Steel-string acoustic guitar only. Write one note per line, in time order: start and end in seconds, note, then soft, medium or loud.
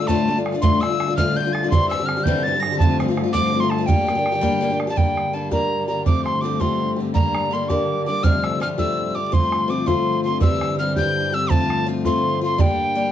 0.01 0.08 D3 soft
0.01 0.08 A3 soft
0.01 0.09 D4 soft
0.08 0.28 D2 medium
0.08 0.28 A2 medium
0.08 0.26 D3 medium
0.08 0.27 A3 medium
0.08 0.28 D4 medium
0.08 0.29 F4 medium
0.27 0.36 D3 medium
0.27 0.37 A3 medium
0.27 0.36 D4 soft
0.27 0.34 F4 medium
0.36 0.54 D3 soft
0.36 0.54 A3 soft
0.36 0.53 D4 soft
0.36 0.51 F4 soft
0.52 0.61 D3 soft
0.52 0.62 A3 soft
0.52 0.62 D4 soft
0.52 0.62 F4 soft
0.62 0.82 D2 medium
0.62 0.82 A2 medium
0.62 0.79 D3 medium
0.62 0.80 A3 medium
0.62 0.81 D4 medium
0.62 0.82 F4 medium
0.80 0.90 D3 medium
0.80 0.90 A3 medium
0.80 0.89 D4 medium
0.80 0.88 F4 medium
0.89 1.09 D3 soft
0.89 1.09 A3 soft
0.89 1.07 D4 soft
0.89 1.06 F4 soft
1.08 1.17 D3 soft
1.08 1.18 A3 soft
1.08 1.17 D4 soft
1.08 1.17 F4 soft
1.18 1.37 D2 medium
1.18 1.37 A2 medium
1.18 1.36 D3 medium
1.18 1.37 A3 medium
1.18 1.38 D4 medium
1.18 1.38 F4 medium
1.37 1.45 D3 medium
1.37 1.46 A3 soft
1.37 1.45 D4 medium
1.37 1.44 F4 medium
1.45 1.64 D3 soft
1.45 1.64 A3 soft
1.45 1.63 D4 soft
1.45 1.62 F4 soft
1.63 1.72 D3 soft
1.63 1.73 A3 soft
1.63 1.72 D4 soft
1.63 1.71 F4 soft
1.72 1.91 C3 medium
1.72 1.90 E3 medium
1.72 1.91 G3 medium
1.72 1.92 C4 medium
1.72 1.92 G4 medium
1.91 1.99 E3 medium
1.91 2.00 G3 medium
1.91 2.00 C4 medium
1.91 1.98 G4 medium
1.99 2.19 G3 soft
1.99 2.17 C4 soft
1.99 2.16 G4 soft
2.17 2.27 G3 soft
2.17 2.26 C4 soft
2.17 2.25 G4 medium
2.27 2.45 C3 medium
2.27 2.44 E3 medium
2.27 2.46 G3 medium
2.27 2.46 C4 medium
2.27 2.47 G4 medium
2.46 2.54 E3 soft
2.46 2.55 G3 medium
2.46 2.55 C4 medium
2.46 2.53 G4 medium
2.54 2.73 G3 soft
2.54 2.73 C4 soft
2.54 2.70 G4 soft
2.72 2.81 G3 soft
2.72 2.81 C4 soft
2.72 2.80 G4 medium
2.81 2.99 F3 medium
2.81 3.00 A3 medium
2.81 3.00 C4 medium
2.81 3.01 F4 medium
3.00 3.08 F3 medium
3.00 3.09 A3 medium
3.00 3.09 C4 medium
3.00 3.07 F4 medium
3.08 3.24 A3 medium
3.08 3.26 C4 soft
3.08 3.22 F4 medium
3.23 3.34 A3 soft
3.23 3.34 C4 soft
3.23 3.33 F4 medium
3.34 3.52 F3 medium
3.34 3.54 A3 medium
3.34 3.53 C4 medium
3.34 3.55 F4 medium
3.53 3.62 F3 soft
3.53 3.62 A3 soft
3.53 3.62 C4 medium
3.53 3.60 F4 medium
3.61 3.79 A3 soft
3.61 3.80 C4 soft
3.61 3.77 F4 soft
3.78 3.88 A3 medium
3.78 3.88 C4 soft
3.78 3.88 F4 medium
3.88 4.06 G3 medium
3.88 4.07 A#3 medium
3.88 4.08 D4 medium
3.88 4.08 G4 medium
4.07 4.16 G3 soft
4.07 4.17 A#3 soft
4.07 4.16 D4 medium
4.07 4.14 G4 medium
4.15 4.34 A#3 soft
4.15 4.33 D4 soft
4.15 4.31 G4 medium
4.32 4.41 A#3 soft
4.32 4.42 D4 soft
4.32 4.42 G4 medium
4.41 4.60 G3 medium
4.41 4.61 A#3 medium
4.41 4.62 D4 medium
4.41 4.63 G4 medium
4.61 4.70 G3 medium
4.61 4.71 A#3 medium
4.61 4.71 D4 medium
4.61 4.69 G4 medium
4.70 4.89 A#3 soft
4.70 4.88 D4 soft
4.70 4.86 G4 soft
4.87 4.96 A#3 soft
4.87 4.96 D4 soft
4.87 4.96 G4 medium
4.96 5.33 G3 medium
4.96 5.33 A#3 medium
4.96 5.34 D4 medium
4.96 5.37 G4 medium
5.33 5.51 G3 medium
5.33 5.51 A#3 medium
5.33 5.51 D4 soft
5.33 5.50 G4 soft
5.51 6.05 G3 soft
5.51 5.89 A#3 medium
5.51 5.89 D4 medium
5.51 5.87 G4 medium
5.88 6.06 A#3 soft
5.88 6.07 D4 soft
5.88 6.06 G4 soft
6.06 6.41 F3 medium
6.06 6.44 A3 medium
6.06 6.42 C4 medium
6.06 6.45 G4 medium
6.42 6.60 F3 soft
6.42 6.60 A3 medium
6.42 6.60 C4 medium
6.42 6.58 G4 medium
6.60 6.98 F3 medium
6.60 6.97 A3 medium
6.60 6.98 C4 medium
6.60 6.96 G4 medium
6.96 7.15 A3 soft
6.96 7.15 C4 soft
6.96 7.14 G4 soft
7.14 7.50 G3 medium
7.14 7.51 A#3 medium
7.14 7.52 D4 medium
7.14 7.53 G4 medium
7.51 7.69 G3 soft
7.51 7.70 A#3 medium
7.51 7.69 D4 medium
7.51 7.68 G4 medium
7.70 8.07 G3 medium
7.70 8.07 A#3 medium
7.70 8.07 D4 medium
7.70 8.05 G4 medium
8.06 8.24 A#3 soft
8.06 8.25 D4 soft
8.06 8.24 G4 soft
8.23 8.61 F2 medium
8.23 8.61 C3 medium
8.23 8.59 F3 medium
8.23 8.60 G3 medium
8.23 8.61 A3 medium
8.23 8.62 G4 medium
8.60 8.78 F3 soft
8.60 8.78 G3 medium
8.60 8.77 A3 medium
8.60 8.77 G4 medium
8.78 9.16 F2 medium
8.78 9.16 C3 medium
8.78 9.16 F3 medium
8.78 9.15 G3 soft
8.78 9.14 A3 medium
8.78 9.13 G4 medium
9.15 9.31 F3 soft
9.15 9.33 G3 soft
9.15 9.32 A3 soft
9.15 9.33 G4 soft
9.32 9.67 F3 medium
9.32 9.69 A3 medium
9.32 9.69 C4 medium
9.32 9.70 F4 medium
9.68 9.86 F3 medium
9.68 9.86 A3 medium
9.68 9.86 C4 soft
9.68 9.85 F4 medium
9.86 10.25 F3 medium
9.86 10.24 A3 medium
9.86 10.27 C4 medium
9.86 10.23 F4 medium
10.24 10.42 A3 soft
10.24 10.41 C4 soft
10.24 10.42 F4 soft
10.40 10.77 E3 medium
10.40 10.78 G3 medium
10.40 10.79 C4 medium
10.40 10.79 G4 medium
10.79 10.96 E3 medium
10.79 10.97 G3 medium
10.79 10.96 C4 medium
10.79 10.95 G4 medium
10.97 11.35 E3 soft
10.97 11.34 G3 medium
10.97 11.33 C4 medium
10.97 11.31 G4 medium
11.32 11.50 G3 soft
11.32 11.49 C4 soft
11.32 11.50 G4 soft
11.50 11.85 F3 medium
11.50 11.88 A3 medium
11.50 11.87 C4 medium
11.50 11.88 F4 medium
11.86 12.05 F3 medium
11.86 12.04 A3 medium
11.86 12.05 C4 medium
11.86 12.04 F4 medium
12.05 12.43 F3 medium
12.05 12.42 A3 medium
12.05 12.43 C4 medium
12.05 12.40 F4 medium
12.41 12.60 A3 soft
12.41 12.59 C4 soft
12.41 12.59 F4 soft
12.58 12.95 G3 medium
12.58 12.95 A#3 medium
12.58 12.96 D4 medium
12.58 12.98 G4 medium
12.95 13.12 G3 medium
12.95 13.12 A#3 medium
12.95 13.12 D4 medium
12.95 13.11 G4 medium